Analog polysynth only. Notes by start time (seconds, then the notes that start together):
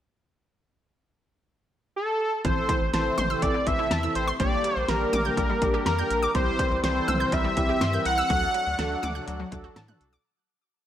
2.44 C4 E4 A4
2.93 C4 E4 A4
3.30 C4 E4 A4
3.67 C4 E4 A4
4.03 C4 E4 A4
4.40 A#3 D4 G4
4.88 A#3 D4 G4
5.25 A#3 D4 G4
5.62 A#3 D4 G4
5.98 A#3 D4 G4
6.35 C4 E4 G4
6.84 C4 E4 A4
7.20 C4 E4 A#4
7.57 C4 E4 G4
7.94 C4 E4 A#4
8.30 D4 F#4 A4
8.79 D4 F#4 A4
9.15 D4 F#4 A4
9.52 D4 F#4 A4
9.88 D4 F#4 A4